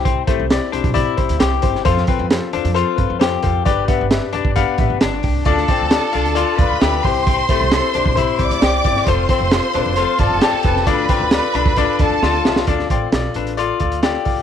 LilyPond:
<<
  \new Staff \with { instrumentName = "Violin section" } { \time 4/4 \key d \dorian \tempo 4 = 133 r1 | r1 | r1 | <a' a''>2~ <a' a''>8 <b' b''>4 <c'' c'''>8~ |
<c'' c'''>2~ <c'' c'''>8 <d'' d'''>4. | <c'' c'''>2~ <c'' c'''>8 <a' a''>4. | <b' b''>2~ <b' b''>8 <a' a''>4. | r1 | }
  \new Staff \with { instrumentName = "Grand piano" } { \time 4/4 \key d \dorian << { r1 | r1 | r2. a''8 g''8~ | g''8 r2. r8 |
r1 | r1 | r1 | r1 | } \\ { <c' e' g' c''>8 <c' e' g' c''>8 <c' e' g' d''>8 <c' e' g' c''>8 <c' e' g' d''>8 <c' e' g' c''>8 <c' e' g' c''>8 <c' e' g' c''>8 | <c' f' a' c''>8 <c' f' a' b'>8 <c' f' a' c''>8 <c' f' a' c''>8 <c' f' a' c''>8 <c' f' a' b'>8 <c' f' a' c''>8 <c' f' a' c''>8 | <d' g' b' d''>8 <d' g' b' e''>8 <d' g' b' e''>8 <d' g' b' d''>8 <d' g' b' f''>8 <d' g' b' e''>8 r4 | <d' f' a' d''>8 <d' f' a' d''>8 <d' f' a' d''>8 <d' f' a' f''>8 <d' f' a' d''>8 <d' f' a' d''>8 <d' f' a' e''>8 <c' e' g' c''>8~ |
<c' e' g' c''>8 <c' e' g' c''>8 <c' e' g' a'>8 <c' e' g' c''>8 <c' e' g' c''>8 <c' e' g' c''>8 <c' e' g' c''>8 <c' e' g' d''>8 | <c' f' a' c''>8 <c' f' a' c''>8 <c' f' a' c''>8 <c' f' a' b'>8 <c' f' a' c''>8 <c' f' a' d''>8 <c' f' a' d''>8 <c' f' a' b'>8 | <d' f' a' d''>8 <d' f' a' d''>8 <d' f' a' d''>8 <d' f' a' d''>8 <d' f' a' d''>8 <d' f' a' d''>8 <d' f' a' d''>8 <d' f' a' e''>8 | <f' a' d''>8 <f' a' d''>8 <f' a' d''>8 <f' a' b'>8 <f' a' d''>8 <f' a' d''>8 <f' a' d''>8 <f' a' d''>8 | } >> }
  \new Staff \with { instrumentName = "Clean electric guitar" } { \time 4/4 \key d \dorian c'8 a8 r8 d'8 e'4 g'4 | f'8 c'8 r8 d'8 f'4 g'4 | g'8 b8 r8 d'8 b4 d'4 | d'8 c'8 r8 d'8 f'4 g'4 |
c'8 a8 r8 d'8 e'4 g'4 | f'8 c'8 r8 d'8 f'4 g'4 | d'8 c'8 r8 d'8 d'4 f'4 | d'8 c'8 r8 d'8 f'4 g'4 | }
  \new Staff \with { instrumentName = "Upright bass" } { \clef bass \time 4/4 \key d \dorian c,8 r16 c,8 r16 c,16 b,,8 r16 c,16 d,16 c,8 g,,8 | f,8 r16 f,8 r16 e,16 f,8 r16 g,16 f,8. f,8 | g,,8 r16 g,,8 r16 f,,16 g,,8 r16 a,,16 g,,16 g,,8 c,8 | d,8 r16 d,8 r16 c,16 d,8 r16 e,16 d,16 d,8 c,8~ |
c,8 r16 c,8 r16 c,16 b,,8 r16 c,16 d,16 c,8 g,,8 | f,,8 r16 f,,8 r16 e,,16 f,,8 r16 g,,16 f,,16 r8 f,,8 | d,8 r16 d,8 r16 c,16 d,8 r16 e,16 d,16 d,8 c,8 | d,8 a,,8 b,,8 a,,4 d,4 c,8 | }
  \new DrumStaff \with { instrumentName = "Drums" } \drummode { \time 4/4 <hh bd>8 <hh bd>8 <hh sn>8 hh16 <hh bd>16 <hh bd>8 <hh bd>16 hh16 <hh sn>8 <hh bd>16 sn16 | <hh bd>16 sn16 <hh bd>8 <hh sn>8 hh16 hh16 hh8 <hh bd>8 <hh sn>8 <hh bd>8 | <hh bd>8 <hh bd>8 <hh sn>8 hh16 bd16 <hh bd>8 <hh bd>8 <hh sn>8 <hho bd>8 | <hh bd>16 sn16 <hh bd>8 <hh sn>8 hh16 hh16 hh8 <hh bd>8 <hh sn>8 <hho bd>8 |
<hh bd>8 <hh bd>8 <hh sn>8 hh16 bd16 <hh bd>8 <hh bd>16 hh16 <hh sn>8 <hh bd>16 sn16 | <hh bd>8 <hh bd>8 <hh sn>8 hh8 hh8 <hh bd>8 <hh sn>8 <hh bd>16 sn16 | <hh bd>8 <hh bd>8 <hh sn>8 hh16 bd16 <hh bd>8 <hh bd>8 sn8 sn16 sn16 | <hh bd>16 sn16 <hh bd>8 <hh sn>8 hh16 hh16 hh8 <hh bd>16 hh16 <hh sn>8 <hho bd>8 | }
>>